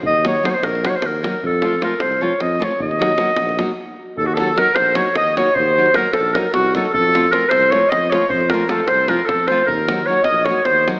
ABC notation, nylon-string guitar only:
X:1
M:7/8
L:1/8
Q:1/4=152
K:none
V:1 name="Nylon-string guitar"
z [_G,_B,_E_G] [G,B,EG] z [G,B,EG] z [G,B,EG] | z [F,A,CF] [F,A,CF] z [F,A,CF] z [F,A,CF] | z [_G,_B,_E_G] [G,B,EG] z [G,B,EG] z2 | z [_G,_B,_E_G] [G,B,EG] z [G,B,EG] z [G,B,EG] |
z [_G,_B,_E_G] [G,B,EG] z [G,B,EG] z [G,B,EG] | z [F,A,CF] [F,A,CF] z [F,A,CF] z [F,A,CF] | z [F,A,CF] [F,A,CF] z [F,A,CF] z [F,A,CF] | z [_G,_B,_E_G] [G,B,EG] z [G,B,EG] z [G,B,EG] |]